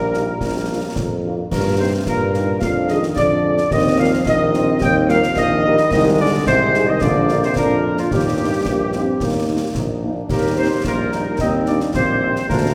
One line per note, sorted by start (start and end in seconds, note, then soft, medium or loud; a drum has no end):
0.00 0.32 A#1 medium
0.00 1.25 A#2 medium
0.00 1.20 G3 medium
0.00 1.20 A#4 medium
0.00 1.21 A#4 medium
0.14 0.24 A#3 soft
0.14 0.25 D#4 soft
0.14 0.25 G4 soft
0.14 snare soft
0.41 0.87 A#1 medium
0.41 concert bass drum medium
0.41 snare medium
0.70 0.80 A#3 soft
0.70 0.80 D4 soft
0.70 0.80 F4 soft
0.96 1.43 F2 medium
0.96 concert bass drum medium
0.96 snare medium
1.25 1.35 A#3 soft
1.25 1.35 D4 soft
1.25 1.35 F4 soft
1.51 1.98 G2 medium
1.51 1.77 A#2 medium
1.51 1.77 A#4 medium
1.51 1.78 A#4 medium
1.51 concert bass drum medium
1.51 snare medium
1.51 crash soft
1.78 2.05 C3 medium
1.78 1.89 A#3 soft
1.78 1.89 D#4 soft
1.78 1.89 G4 soft
1.78 1.91 C5 medium
1.78 1.93 C5 medium
2.06 2.53 G2 medium
2.06 2.63 A#2 medium
2.06 2.58 A#3 medium
2.06 2.58 A#4 medium
2.06 2.59 A#4 medium
2.06 concert bass drum medium
2.06 snare medium
2.34 2.44 A#3 medium
2.34 2.45 D#4 soft
2.34 2.44 G4 soft
2.34 snare soft
2.61 3.08 F2 medium
2.61 2.88 F3 medium
2.61 3.15 D4 medium
2.61 2.87 F5 medium
2.61 2.74 F5 medium
2.61 concert bass drum medium
2.61 snare medium
2.89 3.18 D#3 medium
2.89 3.00 G#3 soft
2.89 2.99 D4 medium
2.89 2.99 G#4 soft
2.89 3.02 D#5 medium
2.89 3.03 D#5 medium
2.89 snare medium
3.03 snare medium
3.15 3.63 F2 medium
3.15 3.70 D3 medium
3.15 3.68 D4 medium
3.15 3.67 D5 medium
3.15 3.68 D5 medium
3.15 concert bass drum medium
3.15 snare medium
3.45 3.54 G#3 soft
3.45 3.55 D4 soft
3.45 3.55 G#4 soft
3.58 snare soft
3.70 4.17 D#2 medium
3.70 3.83 D#3 medium
3.70 4.23 C4 medium
3.70 3.97 D#5 medium
3.70 3.98 D#5 medium
3.70 concert bass drum medium
3.70 snare medium
3.98 4.24 F3 medium
3.98 4.09 G3 medium
3.98 4.09 A#3 soft
3.98 4.09 A#4 medium
3.98 4.26 F5 medium
3.98 4.12 F5 medium
4.26 4.72 A#1 medium
4.26 4.82 D#3 medium
4.26 4.39 A#3 medium
4.26 4.77 D#5 medium
4.26 4.79 D#5 loud
4.26 concert bass drum medium
4.26 snare medium
4.54 4.64 G3 medium
4.54 4.65 A#3 medium
4.54 5.33 C4 medium
4.54 4.65 A#4 medium
4.54 snare medium
4.81 5.27 D#2 medium
4.81 5.11 G3 medium
4.81 5.09 G5 medium
4.81 4.95 G5 loud
4.81 concert bass drum medium
4.81 snare medium
5.09 5.37 F3 medium
5.09 5.19 G3 medium
5.09 5.19 A#3 medium
5.09 5.19 A#4 medium
5.09 5.37 F5 medium
5.09 5.35 F5 medium
5.09 snare medium
5.23 snare medium
5.36 5.78 A#1 medium
5.36 5.88 D#3 medium
5.36 5.50 A#3 medium
5.36 5.87 D#5 medium
5.36 5.88 D#5 loud
5.36 concert bass drum medium
5.36 snare medium
5.64 5.90 G3 medium
5.64 5.75 G3 medium
5.64 5.74 A#3 medium
5.64 5.75 A#4 medium
5.78 snare medium
5.91 6.37 C2 medium
5.91 6.21 D#3 loud
5.91 6.98 G#3 medium
5.91 6.17 D#5 medium
5.91 6.05 D#5 loud
5.91 concert bass drum medium
5.91 snare medium
5.91 crash soft
6.19 6.47 D3 medium
6.19 6.29 G#3 medium
6.19 6.29 D#4 medium
6.19 6.29 G#4 medium
6.19 6.32 D5 medium
6.19 6.45 D5 medium
6.46 6.92 C2 medium
6.46 6.85 C3 medium
6.46 6.85 C5 medium
6.46 6.91 C5 loud
6.46 concert bass drum medium
6.46 snare medium
6.74 6.85 G#3 medium
6.74 6.85 D#4 medium
6.74 6.85 G#4 medium
6.74 snare medium
6.87 7.01 D#3 medium
6.87 7.01 D#5 medium
6.87 7.03 D#5 medium
7.01 7.47 A#1 medium
7.01 7.40 D3 medium
7.01 7.56 A#3 medium
7.01 7.42 D5 loud
7.01 7.40 D5 medium
7.01 concert bass drum medium
7.01 snare medium
7.29 7.40 A#3 medium
7.29 7.40 F4 medium
7.29 snare medium
7.42 7.56 C3 medium
7.42 7.56 C5 medium
7.42 snare medium
7.56 8.02 F2 medium
7.56 7.99 A#2 medium
7.56 8.07 D4 medium
7.56 7.95 A#4 medium
7.56 concert bass drum medium
7.56 snare medium
7.85 7.95 A#3 medium
7.85 7.95 F4 soft
7.98 8.10 F2 medium
7.98 8.11 F4 medium
7.98 snare soft
8.11 8.57 D#2 medium
8.11 9.72 G2 medium
8.11 8.61 D#4 medium
8.11 9.76 G4 medium
8.11 9.73 G4 medium
8.11 concert bass drum medium
8.11 snare medium
8.39 8.49 A#3 soft
8.39 8.49 D#4 soft
8.66 9.12 A#1 medium
8.66 8.79 A#3 medium
8.66 concert bass drum medium
8.66 snare medium
8.93 9.04 A#3 soft
8.93 9.19 C4 medium
8.93 9.04 D#4 soft
8.93 snare soft
9.20 9.67 D#2 medium
9.20 9.72 A#3 medium
9.20 concert bass drum medium
9.20 snare medium
9.50 9.59 A#3 soft
9.50 9.59 D#4 soft
9.75 10.22 A#1 medium
9.75 10.01 D#4 medium
9.75 concert bass drum medium
9.75 snare medium
10.03 10.13 A#3 soft
10.03 10.31 D4 medium
10.03 10.13 D#4 soft
10.29 10.76 D#2 medium
10.29 12.47 D#3 medium
10.29 12.47 G3 medium
10.29 10.43 A#3 medium
10.29 10.81 G4 medium
10.29 10.43 A#4 medium
10.29 10.56 A#4 medium
10.29 concert bass drum medium
10.29 snare medium
10.29 crash soft
10.57 10.69 G3 medium
10.57 10.69 A#3 soft
10.57 10.71 C4 medium
10.57 10.69 D#4 soft
10.57 10.83 C5 medium
10.57 10.71 C5 medium
10.84 11.31 A#1 medium
10.84 11.42 A#3 medium
10.84 11.12 F4 medium
10.84 11.37 A#4 medium
10.84 concert bass drum medium
10.84 snare medium
11.12 11.24 G3 soft
11.12 11.24 A#3 medium
11.12 11.40 D#4 medium
11.12 11.24 D#4 medium
11.12 snare soft
11.39 11.86 D#2 medium
11.39 11.91 C4 medium
11.39 11.67 D#4 medium
11.39 11.46 D#5 medium
11.39 11.53 D#5 medium
11.39 concert bass drum medium
11.39 snare medium
11.66 11.79 G3 soft
11.66 11.79 A#3 soft
11.66 11.93 D4 medium
11.66 11.79 D#4 soft
11.66 11.80 D5 medium
11.66 11.74 D5 medium
11.66 snare soft
11.80 snare medium
11.94 12.41 A#1 medium
11.94 12.23 A#3 medium
11.94 12.46 C4 medium
11.94 12.46 C5 medium
11.94 concert bass drum medium
11.94 snare medium
12.23 12.33 G3 medium
12.23 12.33 A#3 medium
12.23 12.35 C4 medium
12.23 12.33 D#4 medium
12.36 snare soft
12.49 12.74 D2 medium
12.49 12.74 F3 medium
12.49 12.74 G#3 medium
12.49 12.74 A#3 medium
12.49 12.74 D4 medium
12.49 12.74 A#4 loud
12.49 12.74 A#4 medium
12.49 concert bass drum medium
12.49 snare medium